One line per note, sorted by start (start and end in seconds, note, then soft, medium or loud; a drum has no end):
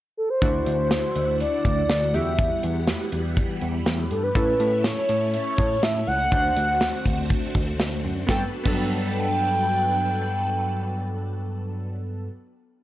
0.17 0.29 A4 medium
0.30 1.36 C5 loud
0.42 0.59 D2 loud
0.42 2.12 D3 medium
0.42 2.12 A3 medium
0.42 2.11 D4 medium
0.42 2.12 E4 medium
0.42 2.11 E4 medium
0.42 2.11 F#4 medium
0.42 4.31 F#5 medium
0.42 kick loud
0.42 closed hi-hat medium
0.66 0.92 D2 loud
0.66 closed hi-hat medium
0.91 snare loud
0.91 closed hi-hat medium
1.16 1.41 D2 loud
1.16 closed hi-hat medium
1.40 2.16 D5 loud
1.40 closed hi-hat medium
1.65 1.82 D2 loud
1.65 kick medium
1.65 closed hi-hat medium
1.89 2.14 D2 loud
1.89 snare loud
1.89 closed hi-hat medium
2.14 2.48 E2 loud
2.14 4.33 E3 medium
2.14 4.33 G3 medium
2.14 4.33 B3 medium
2.14 4.07 E4 medium
2.14 4.07 F#4 medium
2.14 4.07 G4 medium
2.14 2.63 E5 loud
2.14 closed hi-hat medium
2.39 kick loud
2.39 closed hi-hat medium
2.63 2.89 E2 loud
2.63 closed hi-hat medium
2.87 snare loud
2.87 closed hi-hat medium
3.12 3.38 E2 medium
3.12 closed hi-hat medium
3.37 kick loud
3.37 closed hi-hat medium
3.61 3.79 E2 loud
3.61 closed hi-hat medium
3.86 4.03 E2 loud
3.86 snare loud
3.86 closed hi-hat medium
4.11 4.28 G2 medium
4.11 4.24 A4 medium
4.11 closed hi-hat medium
4.23 4.86 B4 medium
4.35 4.52 A2 loud
4.35 6.30 A3 medium
4.35 6.28 C#4 medium
4.35 6.30 C#4 medium
4.35 6.30 E4 medium
4.35 6.28 E4 medium
4.35 6.28 A4 medium
4.35 kick loud
4.35 closed hi-hat medium
4.60 4.86 A2 loud
4.60 closed hi-hat medium
4.84 5.33 C#5 loud
4.84 snare loud
4.84 closed hi-hat medium
5.09 5.35 A2 loud
5.09 closed hi-hat medium
5.34 5.84 C#5 loud
5.34 closed hi-hat medium
5.58 5.75 A2 loud
5.58 kick medium
5.58 closed hi-hat medium
5.83 6.00 A2 loud
5.83 6.07 E5 loud
5.83 snare loud
5.83 closed hi-hat medium
6.07 6.25 C#2 medium
6.07 7.75 F#5 loud
6.07 open hi-hat medium
6.32 6.49 D2 loud
6.32 8.27 D3 medium
6.32 8.27 A3 medium
6.32 8.27 C4 medium
6.32 8.25 D4 medium
6.32 8.25 F#4 medium
6.32 8.27 F#4 medium
6.32 8.25 C5 medium
6.32 kick loud
6.32 closed hi-hat medium
6.57 6.82 D2 loud
6.57 closed hi-hat medium
6.81 snare loud
6.81 closed hi-hat medium
7.06 7.31 D2 loud
7.06 kick medium
7.06 closed hi-hat medium
7.30 kick loud
7.30 closed hi-hat medium
7.55 7.72 D2 loud
7.55 kick medium
7.55 closed hi-hat medium
7.79 8.04 D2 loud
7.79 snare loud
7.79 closed hi-hat medium
8.04 8.21 F#2 medium
8.04 open hi-hat medium
8.27 8.42 G2 medium
8.27 11.90 F#3 medium
8.27 8.41 B3 medium
8.27 11.90 D4 medium
8.27 8.42 F#4 medium
8.27 11.90 A4 medium
8.27 8.43 A4 medium
8.27 11.90 B4 medium
8.27 8.42 G5 medium
8.27 kick loud
8.27 snare medium
8.64 12.27 G2 loud
8.64 12.27 F#3 medium
8.64 12.25 B3 medium
8.64 12.29 A4 medium
8.64 12.27 G5 loud
8.64 kick loud
8.64 crash medium